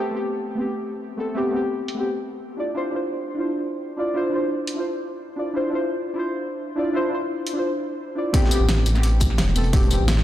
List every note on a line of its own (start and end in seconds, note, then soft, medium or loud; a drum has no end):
0.00 0.11 B3 medium
0.00 0.12 C4 medium
0.00 0.13 G4 loud
0.11 0.54 A3 medium
0.11 0.55 B3 medium
0.11 0.56 C4 medium
0.17 0.57 G4 medium
0.55 1.15 A3 medium
0.55 1.16 B3 medium
0.55 1.17 C4 medium
0.61 1.18 G4 medium
1.17 1.33 A3 medium
1.17 1.34 B3 medium
1.17 1.34 C4 medium
1.17 1.35 A4 medium
1.34 1.49 A3 loud
1.34 1.51 B3 medium
1.34 1.52 C4 medium
1.34 1.52 G4 loud
1.51 1.93 A3 medium
1.51 1.95 B3 medium
1.51 1.96 C4 medium
1.56 1.97 G4 medium
1.88 open hi-hat medium
1.95 2.55 A3 medium
1.95 2.56 B3 medium
1.95 2.57 C4 medium
2.00 2.58 G4 medium
2.57 2.73 D4 medium
2.57 2.74 E4 medium
2.57 2.74 F4 medium
2.57 2.74 D5 medium
2.75 2.90 D4 loud
2.75 2.91 E4 medium
2.75 2.92 F4 medium
2.75 2.92 C5 loud
2.91 3.33 D4 medium
2.91 3.35 E4 medium
2.91 3.36 F4 medium
2.96 3.37 C5 medium
3.35 3.95 D4 medium
3.35 3.96 E4 medium
3.35 3.96 F4 medium
3.40 3.97 C5 medium
3.97 4.13 D4 medium
3.97 4.13 E4 medium
3.97 4.14 F4 medium
3.97 4.14 D5 medium
4.14 4.29 D4 loud
4.14 4.31 E4 medium
4.14 4.31 F4 medium
4.14 4.31 C5 loud
4.30 4.73 D4 medium
4.30 4.74 E4 medium
4.30 4.75 F4 medium
4.35 4.76 C5 medium
4.67 open hi-hat medium
4.74 5.34 D4 medium
4.74 5.35 E4 medium
4.74 5.36 F4 medium
4.80 5.37 C5 medium
5.36 5.52 D4 medium
5.36 5.53 E4 medium
5.36 5.53 F4 medium
5.36 5.54 D5 medium
5.54 5.69 D4 loud
5.54 5.70 E4 medium
5.54 5.71 F4 medium
5.54 5.71 C5 loud
5.70 6.12 D4 medium
5.70 6.14 E4 medium
5.70 6.15 F4 medium
5.75 6.16 C5 medium
6.14 6.74 D4 medium
6.14 6.74 E4 medium
6.14 6.75 F4 medium
6.19 6.76 C5 medium
6.76 6.92 D4 medium
6.76 6.92 E4 medium
6.76 6.93 F4 medium
6.76 6.93 D5 medium
6.93 7.08 D4 loud
6.93 7.10 E4 medium
6.93 7.10 F4 medium
6.93 7.11 C5 loud
7.09 7.52 D4 medium
7.09 7.53 E4 medium
7.09 7.54 F4 medium
7.15 7.55 C5 medium
7.47 open hi-hat medium
7.53 8.13 D4 medium
7.53 8.14 E4 medium
7.53 8.15 F4 medium
7.59 8.16 C5 medium
8.15 8.31 D4 medium
8.15 8.32 E4 medium
8.15 8.32 F4 medium
8.15 8.33 D5 medium
8.33 8.48 A3 loud
8.33 8.49 B3 medium
8.33 8.50 C4 medium
8.33 8.50 G4 loud
8.33 kick loud
8.33 closed hi-hat loud
8.44 snare soft
8.49 8.92 A3 medium
8.49 8.93 B3 medium
8.49 8.94 C4 medium
8.49 closed hi-hat medium
8.49 tambourine medium
8.54 8.95 G4 loud
8.61 8.85 A1 loud
8.69 snare loud
8.69 closed hi-hat medium
8.78 snare soft
8.86 9.40 A1 loud
8.86 closed hi-hat medium
8.86 tambourine medium
8.93 9.53 A3 medium
8.93 9.54 B3 medium
8.93 9.55 C4 medium
8.93 snare soft
8.93 tambourine soft
8.99 9.56 G4 medium
9.03 closed hi-hat medium
9.20 kick loud
9.20 closed hi-hat medium
9.20 tambourine medium
9.30 snare soft
9.38 9.99 E1 medium
9.38 snare loud
9.38 closed hi-hat loud
9.38 closed hi-hat medium
9.48 snare soft
9.55 9.71 A3 medium
9.55 9.71 B3 medium
9.55 9.72 C4 medium
9.55 9.72 A4 loud
9.55 closed hi-hat medium
9.55 open hi-hat medium
9.55 tambourine medium
9.64 closed hi-hat soft
9.72 9.87 A3 loud
9.72 9.89 B3 medium
9.72 9.89 C4 medium
9.72 9.90 G4 loud
9.72 kick loud
9.72 closed hi-hat medium
9.83 closed hi-hat soft
9.88 10.24 A3 medium
9.88 10.24 B3 medium
9.88 10.24 C4 medium
9.88 closed hi-hat medium
9.88 tambourine medium
9.94 10.24 G4 loud
10.00 10.24 A1 loud
10.08 snare loud
10.08 closed hi-hat medium
10.17 snare soft